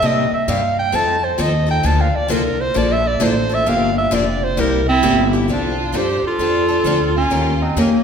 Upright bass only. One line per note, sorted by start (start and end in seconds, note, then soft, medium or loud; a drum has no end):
0.02 0.30 C3 medium
0.32 muted upright bass stroke soft
0.48 0.92 G2 medium
0.93 1.38 F2 medium
1.38 1.83 D#2 loud
1.84 2.12 D2 medium
2.15 muted upright bass stroke soft
2.30 2.75 C2 medium
2.76 3.20 A#1 medium
3.22 3.66 A1 loud
3.67 4.11 G1 medium
4.12 4.57 F1 medium
4.57 5.02 C2 loud
5.02 5.47 G1 loud
5.48 5.92 C2 medium
5.93 6.21 G2 medium
6.23 muted upright bass stroke soft
6.38 6.83 F2 medium
6.84 7.29 D2 medium
7.30 7.75 D#2 medium
7.76 8.04 F2 medium